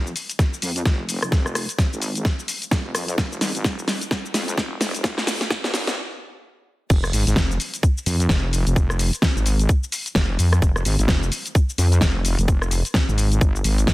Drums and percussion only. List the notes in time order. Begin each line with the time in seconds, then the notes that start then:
0.07 shaker
0.16 open hi-hat, shaker
0.30 closed hi-hat, shaker
0.39 kick, snare, closed hi-hat, shaker
0.54 shaker
0.62 open hi-hat, shaker
0.76 closed hi-hat, shaker
0.85 kick, snare, closed hi-hat, shaker
1.09 open hi-hat, shaker
1.23 cross-stick, closed hi-hat, shaker
1.32 kick, snare, closed hi-hat, shaker
1.46 cross-stick, shaker
1.55 cross-stick, open hi-hat, shaker
1.69 closed hi-hat, shaker
1.78 kick, snare, closed hi-hat, shaker
1.93 shaker
2.02 open hi-hat, shaker
2.15 closed hi-hat, shaker
2.25 kick, snare, closed hi-hat, shaker
2.39 shaker
2.48 open hi-hat, shaker
2.62 closed hi-hat, shaker
2.71 kick, snare, closed hi-hat, shaker
2.95 cross-stick, open hi-hat, shaker
3.08 closed hi-hat, shaker
3.18 kick, snare, closed hi-hat, shaker
3.32 shaker
3.41 snare, open hi-hat, shaker
3.55 closed hi-hat, shaker
3.64 kick, snare, closed hi-hat, shaker
3.79 shaker
3.88 snare, open hi-hat, shaker
4.01 closed hi-hat, shaker
4.11 kick, snare, closed hi-hat, shaker
4.26 shaker
4.34 snare, open hi-hat, shaker
4.48 closed hi-hat, shaker
4.58 kick, snare, closed hi-hat, shaker
4.81 snare, open hi-hat, shaker
4.94 closed hi-hat, shaker
5.04 kick, snare, closed hi-hat, shaker
5.18 snare, shaker
5.27 snare, open hi-hat, shaker
5.41 snare, closed hi-hat, shaker
5.50 kick, snare, closed hi-hat, shaker
5.64 snare, shaker
5.74 snare, open hi-hat, shaker
5.87 snare, closed hi-hat, shaker
6.90 kick, closed hi-hat, crash, shaker
7.04 cross-stick, shaker
7.13 open hi-hat, shaker
7.27 closed hi-hat, shaker
7.36 kick, snare, closed hi-hat, shaker
7.51 shaker
7.60 open hi-hat, shaker
7.74 closed hi-hat, shaker
7.83 kick, closed hi-hat, shaker
7.98 shaker
8.06 open hi-hat, shaker
8.20 closed hi-hat, shaker
8.29 kick, snare, closed hi-hat, shaker
8.53 open hi-hat, shaker
8.67 closed hi-hat, shaker
8.76 kick, closed hi-hat, shaker
8.90 cross-stick, shaker
8.99 open hi-hat, shaker
9.13 closed hi-hat, shaker
9.22 kick, snare, closed hi-hat, shaker
9.37 shaker
9.46 open hi-hat, shaker
9.59 closed hi-hat, shaker
9.69 kick, closed hi-hat, shaker
9.84 shaker
9.92 open hi-hat, shaker
10.06 closed hi-hat, shaker
10.15 kick, snare, closed hi-hat, shaker
10.39 open hi-hat, shaker
10.53 cross-stick, closed hi-hat, shaker
10.62 kick, closed hi-hat, shaker
10.76 cross-stick, shaker
10.85 open hi-hat, shaker
10.99 closed hi-hat, shaker
11.08 kick, snare, closed hi-hat, shaker
11.23 shaker
11.32 open hi-hat, shaker
11.46 closed hi-hat, shaker
11.55 kick, closed hi-hat, shaker
11.70 shaker
11.78 open hi-hat, shaker
11.92 closed hi-hat, shaker
12.01 kick, snare, closed hi-hat, shaker
12.25 open hi-hat, shaker
12.39 closed hi-hat, shaker
12.48 kick, closed hi-hat, shaker
12.62 cross-stick, shaker
12.71 open hi-hat, shaker
12.85 closed hi-hat, shaker
12.94 kick, snare, closed hi-hat, shaker
13.09 shaker
13.18 open hi-hat, shaker
13.32 closed hi-hat, shaker
13.41 kick, closed hi-hat, shaker
13.56 shaker
13.64 open hi-hat, shaker
13.78 closed hi-hat, shaker
13.87 kick, snare, closed hi-hat, shaker